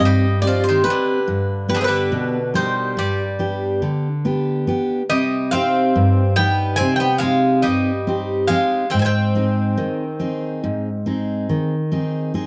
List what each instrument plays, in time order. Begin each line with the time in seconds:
Already playing: steel-string acoustic guitar C4 D#4 G4
0.00 steel-string acoustic guitar G2, bouzouki D#5
0.05 bouzouki G3
0.42 steel-string acoustic guitar C4 G4 D#5, bouzouki D5
0.47 bouzouki F3
0.64 bouzouki C5
0.69 bouzouki D#3
0.84 steel-string acoustic guitar C4 G4, bouzouki B4
0.90 bouzouki D3
1.28 steel-string acoustic guitar G2
1.69 steel-string acoustic guitar B3 D4 G4, bouzouki B4
1.75 bouzouki D3 G#4
1.81 bouzouki C3 B4
1.88 bouzouki D3
2.12 steel-string acoustic guitar B2
2.54 bouzouki D#3 C5, steel-string acoustic guitar G3 D4 G4
2.97 steel-string acoustic guitar G2, bouzouki G3 D5
3.39 steel-string acoustic guitar B3 D4 G4
3.82 steel-string acoustic guitar D3
4.25 steel-string acoustic guitar B3 D4 G4
4.67 steel-string acoustic guitar B3 D4 G4
5.10 steel-string acoustic guitar C3, bouzouki G3 D#5
5.51 bouzouki C4 F5, steel-string acoustic guitar C4 D#4 G4
5.95 steel-string acoustic guitar G2
6.36 steel-string acoustic guitar G3 D#4 G4, bouzouki B3 G5
6.76 bouzouki C4 G#5
6.81 steel-string acoustic guitar C3
6.96 bouzouki G5
7.00 bouzouki B3
7.18 bouzouki G#3 F5
7.23 steel-string acoustic guitar C4 D#4 G4
7.62 steel-string acoustic guitar G2, bouzouki G3 D#5
8.07 steel-string acoustic guitar C4 D#4 G4
8.48 bouzouki G#3 F5, steel-string acoustic guitar C4 D#4 G4
8.90 steel-string acoustic guitar G#2, bouzouki C4 G5
8.99 bouzouki C4 G#5
9.05 bouzouki C4 G5
9.35 steel-string acoustic guitar C4 D#4 G#4
9.78 steel-string acoustic guitar D#3
10.20 steel-string acoustic guitar C4 D#4 G#4
10.64 steel-string acoustic guitar G#2
11.06 steel-string acoustic guitar C4 D#4 G#4
11.49 steel-string acoustic guitar D#3
11.92 steel-string acoustic guitar C4 D#4 G#4
12.34 steel-string acoustic guitar C4 D#4 G#4